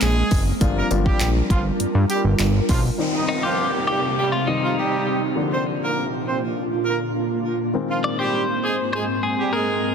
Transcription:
0.00 0.23 A#1 medium
0.00 0.59 G#3 medium
0.00 0.44 G#3 medium
0.00 0.57 A#3 medium
0.00 0.59 C4 loud
0.00 0.43 G#4 medium
0.00 clap loud
0.00 closed hi-hat loud
0.00 tambourine medium
0.31 0.53 F#1 medium
0.31 kick loud
0.31 open hi-hat medium
0.31 tambourine soft
0.61 0.82 G1 loud
0.61 0.84 F3 medium
0.61 0.84 G3 medium
0.61 2.96 G3 medium
0.61 0.84 A#3 medium
0.61 2.96 D4 medium
0.61 0.84 D4 medium
0.61 2.96 F4 medium
0.61 0.84 F4 medium
0.61 2.96 A#4 medium
0.61 kick loud
0.61 closed hi-hat loud
0.61 tambourine medium
0.76 0.88 A#3 medium
0.76 0.87 A#4 medium
0.91 1.12 G1 loud
0.91 1.82 F3 medium
0.91 1.82 G3 medium
0.91 1.82 A#3 medium
0.91 1.82 D4 medium
0.91 1.82 F4 medium
0.91 closed hi-hat medium
0.91 tambourine medium
1.06 1.29 G3 medium
1.06 1.29 G4 medium
1.06 kick loud
1.20 1.42 A#1 loud
1.20 clap loud
1.20 closed hi-hat loud
1.20 tambourine medium
1.50 1.71 G1 loud
1.50 1.62 F3 medium
1.50 1.62 F4 medium
1.50 kick medium
1.50 closed hi-hat medium
1.80 1.86 G2 soft
1.80 closed hi-hat loud
1.95 2.05 G2 loud
2.09 2.21 G3 medium
2.09 2.21 G4 medium
2.09 closed hi-hat medium
2.09 tambourine medium
2.24 2.35 G1 medium
2.39 2.61 G1 medium
2.39 clap loud
2.39 closed hi-hat loud
2.39 tambourine medium
2.69 2.90 B1 loud
2.69 2.81 F3 medium
2.69 2.80 F4 medium
2.69 kick medium
2.69 open hi-hat medium
2.69 tambourine medium
2.98 5.34 C3 medium
2.98 4.44 D#3 medium
2.98 4.44 G3 medium
2.98 4.44 C4 medium
2.98 5.34 C4 medium
2.98 4.45 D#4 medium
2.98 5.34 D#4 medium
2.98 5.34 G4 medium
2.98 downlifter medium
3.13 3.25 D#4 medium
3.13 3.25 D#5 medium
3.29 3.42 D#4 medium
3.43 3.67 F3 medium
3.43 3.66 F4 medium
3.43 3.85 G4 medium
3.87 4.00 G3 medium
3.87 4.29 G4 loud
3.87 3.99 G4 medium
4.18 4.30 G3 medium
4.18 4.29 G4 medium
4.32 4.48 F4 medium
4.47 5.36 D#3 soft
4.47 5.36 G3 soft
4.47 5.37 C4 soft
4.47 5.03 D#4 medium
4.47 5.37 D#4 medium
4.62 4.74 F3 medium
4.62 4.74 F4 medium
4.77 5.19 G3 medium
4.77 5.19 G4 medium
5.36 7.72 A#2 medium
5.36 7.70 D3 medium
5.36 7.70 F3 medium
5.36 7.70 A#3 medium
5.36 9.95 A#3 medium
5.36 7.70 D4 medium
5.36 7.72 D4 medium
5.36 7.72 F4 medium
5.51 5.63 C4 medium
5.51 5.63 C5 medium
5.81 6.04 A#3 medium
5.81 6.04 A#4 medium
6.26 6.38 C4 soft
6.26 6.37 C5 medium
6.85 6.97 A#3 medium
6.85 6.96 A#4 medium
7.74 9.95 G#2 medium
7.74 9.95 D#3 medium
7.74 9.95 G#3 medium
7.74 9.95 A#3 medium
7.74 9.95 C4 medium
7.89 8.01 F3 medium
7.89 8.00 F4 medium
8.04 8.18 D5 loud
8.19 8.42 G3 medium
8.19 8.42 G4 medium
8.19 8.89 C5 medium
8.63 8.75 G#3 medium
8.63 8.75 G#4 medium
8.93 9.05 G#3 medium
8.93 9.04 G#4 medium
8.93 9.21 C5 medium
9.23 9.50 G#4 medium
9.37 9.49 G3 medium
9.37 9.49 G4 medium
9.53 9.95 G#3 medium
9.53 9.94 G#4 medium
9.53 9.94 A#4 medium

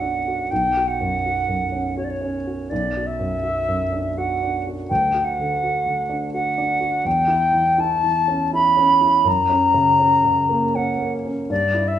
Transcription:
0.00 0.47 B1 soft
0.00 0.53 F#2 soft
0.00 0.02 D4 soft
0.00 0.41 D4 soft
0.00 0.28 F#4 soft
0.00 0.53 F#5 soft
0.28 0.52 F#4 soft
0.51 2.67 B1 soft
0.51 0.89 G5 soft
0.77 1.15 F#4 soft
0.88 1.97 F#5 medium
1.00 1.38 F#2 soft
1.26 1.63 F#4 soft
1.48 1.87 F#2 soft
1.72 2.11 C#4 soft
1.97 2.36 F#4 soft
1.97 2.06 C#5 soft
2.04 2.12 D5 soft
2.10 2.71 C#5 soft
2.22 2.61 C#4 soft
2.47 2.71 F#4 soft
2.70 4.87 B1 soft
2.70 3.08 D5 soft
2.97 3.34 F#4 soft
3.07 4.19 E5 medium
3.19 3.58 F#2 soft
3.43 3.82 F#4 soft
3.68 4.07 F#2 soft
3.92 4.32 D4 soft
4.18 4.57 F#4 soft
4.18 4.65 F#5 soft
4.43 4.81 D4 soft
4.67 4.90 F#4 soft
4.90 7.02 D2 soft
4.90 5.26 G5 medium
5.14 5.52 F#4 soft
5.24 6.32 F#5 medium
5.39 5.77 D3 soft
5.63 6.01 F#4 soft
5.86 6.24 D3 soft
6.09 6.48 D4 soft
6.33 6.72 F#4 soft
6.33 7.08 F#5 medium
6.58 6.96 D4 soft
6.80 7.05 F#4 soft
7.05 9.22 E2 soft
7.05 7.82 G5 medium
7.28 7.68 E4 soft
7.52 7.93 E3 soft
7.78 8.18 E4 soft
7.78 8.54 A5 medium
8.03 8.43 E3 soft
8.28 8.68 C#4 soft
8.53 8.92 E4 soft
8.53 9.29 B5 medium
8.77 9.16 C#4 soft
9.01 9.26 E4 soft
9.25 11.45 F#2 soft
9.25 10.77 A#5 medium
9.50 9.90 C#4 soft
9.74 10.15 C#3 soft
9.99 10.40 C#4 soft
10.24 10.64 C#3 soft
10.49 10.89 A#3 soft
10.75 11.15 C#4 soft
10.75 11.13 F#5 medium
10.98 11.39 A#3 soft
11.25 11.50 C#4 soft
11.50 11.99 G2 soft
11.50 11.89 D5 medium
11.74 11.99 E4 soft
11.88 11.99 E5 medium

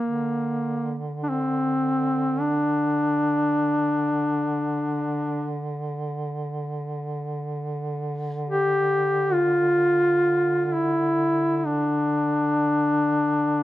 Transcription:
0.00 13.63 D3 soft
0.00 0.98 A#3 medium
1.23 1.30 D4 soft
1.29 2.42 C4 medium
2.41 5.56 D4 medium
8.49 9.35 G4 medium
9.33 10.65 F4 medium
10.65 10.75 F4 soft
10.74 11.57 E4 medium
11.57 11.67 E4 soft
11.66 13.63 D4 medium

